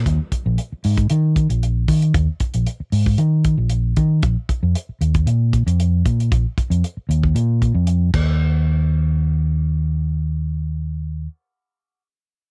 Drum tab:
CC |----------------|----------------|----------------|--------------x-|
HH |x-x-x-oxx-xxx-ox|x-xxx-o-x-x-x-x-|x-x-x-xxx-xxx-xx|x-xxx-x-x-x-x---|
BD |o-o----o--o---o-|o-o----o--o---o-|o-o----o--o---o-|o-o----o--o---o-|

CC |----------------|----------------|
HH |----------------|----------------|
BD |----------------|----------------|